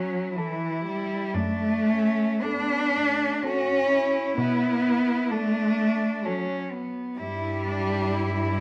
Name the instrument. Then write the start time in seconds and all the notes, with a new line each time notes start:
cello
Already playing: F#3 C#4
0.35 E3 E4 A4
0.85 G3
1.34 F#2 A3 D4
1.89 C#4
2.42 B3 D4 A4
2.96 A3
3.44 C#4 F#4 A4
3.90 E4
4.38 B2 B3
5.30 A3 D4 A4
6.24 F#3 C#4 A4
6.71 B3
7.18 G2 G3 E4
7.67 D4
8.15 E4